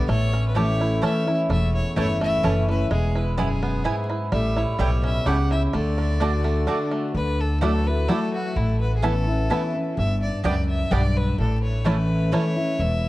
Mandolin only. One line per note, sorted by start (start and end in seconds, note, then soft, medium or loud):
0.55 0.64 A3 medium
0.55 0.65 E4 medium
0.55 0.65 C#5 loud
0.55 0.65 A5 loud
1.02 1.11 A3 medium
1.02 1.12 E4 medium
1.02 1.12 C#5 medium
1.02 1.12 A5 loud
1.96 2.06 A3 medium
1.96 2.06 E4 medium
1.96 2.06 C#5 loud
1.96 2.06 A5 loud
2.43 2.53 A3 medium
2.43 2.53 E4 medium
2.43 2.53 C#5 medium
2.43 2.54 A5 medium
3.38 3.47 B3 loud
3.38 3.47 E4 loud
3.38 3.48 B4 loud
3.38 3.48 G#5 loud
3.84 3.94 B3 medium
3.84 3.94 E4 medium
3.84 3.95 B4 loud
3.84 3.95 G#5 loud
4.79 4.89 A3 loud
4.79 4.89 E4 medium
4.79 4.89 C#5 loud
4.79 4.89 G5 loud
5.26 5.36 A3 loud
5.26 5.36 E4 loud
5.26 5.36 C#5 loud
5.26 5.36 G5 loud
6.20 6.30 A3 medium
6.20 6.30 F#4 medium
6.20 6.30 D5 loud
6.20 6.30 A5 loud
6.67 6.77 A3 medium
6.67 6.77 F#4 medium
6.67 6.77 D5 medium
6.67 6.77 A5 medium
7.61 7.71 A3 loud
7.61 7.71 E4 loud
7.61 7.71 D5 loud
7.61 7.71 F#5 loud
8.08 8.18 A3 medium
8.08 8.18 E4 medium
8.08 8.18 D5 loud
8.08 8.18 F#5 medium
9.02 9.12 C#4 loud
9.02 9.12 A4 loud
9.02 9.13 E5 loud
9.02 9.13 B5 loud
9.50 9.59 C#4 medium
9.50 9.59 A4 medium
9.50 9.60 E5 medium
9.50 9.60 B5 medium
10.44 10.53 B3 loud
10.44 10.53 G4 medium
10.44 10.54 D5 loud
10.44 10.54 G5 loud
10.91 11.00 B3 loud
10.91 11.00 G4 loud
10.91 11.01 D5 loud
10.91 11.01 G5 loud
11.85 11.94 A3 medium
11.85 11.94 E4 loud
11.85 11.95 C#5 loud
11.85 11.95 A5 loud
12.32 12.41 A3 medium
12.32 12.42 E4 medium
12.32 12.42 C#5 loud
12.32 12.42 A5 medium